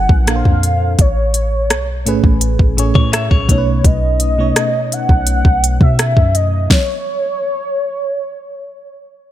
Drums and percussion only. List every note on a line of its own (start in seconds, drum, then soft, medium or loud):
0.09 kick medium
0.27 cross-stick loud
0.27 closed hi-hat medium
0.45 kick medium
0.63 closed hi-hat medium
0.99 kick loud
0.99 closed hi-hat medium
1.34 closed hi-hat medium
1.70 cross-stick loud
1.70 closed hi-hat medium
2.07 closed hi-hat medium
2.24 kick medium
2.41 closed hi-hat medium
2.59 kick medium
2.78 closed hi-hat medium
2.95 kick medium
3.13 cross-stick loud
3.13 closed hi-hat medium
3.31 kick medium
3.49 kick medium
3.49 closed hi-hat medium
3.84 kick loud
3.84 closed hi-hat medium
4.20 closed hi-hat medium
4.56 cross-stick loud
4.56 closed hi-hat medium
4.92 closed hi-hat medium
5.09 kick medium
5.27 closed hi-hat medium
5.45 kick medium
5.64 closed hi-hat medium
5.81 kick loud
5.99 cross-stick loud
5.99 closed hi-hat medium
6.17 kick medium
6.35 closed hi-hat medium
6.70 kick loud
6.70 snare medium